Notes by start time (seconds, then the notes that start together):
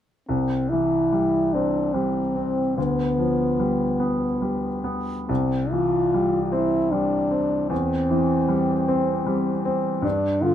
0.29 C2 C4
0.69 E3 E4
1.12 G3
1.53 C4 D4
1.94 G3 C4
2.36 C4
2.78 D2 B3
3.18 F3
3.60 G3
4.00 B3
4.42 G3
4.84 B3
5.28 C2 C4
5.71 E3 F4
6.14 G3
6.46 F4
6.52 C4 E4
6.91 G3 D4
7.31 C4
7.70 E2 C4
8.10 E3
8.49 G3
8.88 C4
9.27 G3
9.65 C4
10.02 G2 D4
10.42 D3 F4